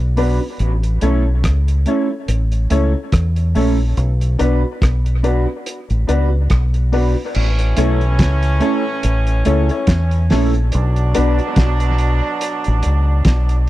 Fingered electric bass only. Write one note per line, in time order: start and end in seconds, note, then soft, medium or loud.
0.00 0.38 B1 medium
0.60 1.00 A1 loud
1.02 1.45 B1 medium
1.45 1.85 C#2 loud
2.28 2.69 A1 medium
2.71 2.94 C#2 medium
3.14 3.54 E2 medium
3.56 3.96 A#1 medium
3.97 4.38 B1 loud
4.41 4.63 B1 medium
4.82 5.45 B1 medium
5.90 6.08 A1 medium
6.09 6.49 C#2 medium
6.51 7.14 B1 medium
7.36 7.76 A1 loud
7.78 8.20 B1 medium
8.20 8.60 C#2 loud
9.04 9.44 A1 loud
9.47 9.69 C#2 medium
9.88 10.28 E2 loud
10.32 10.71 A#1 medium
10.75 11.14 B1 loud
11.17 11.39 B1 medium
11.57 12.20 B1 medium
12.68 12.84 A1 loud
12.86 13.25 C#2 medium
13.26 13.70 B1 medium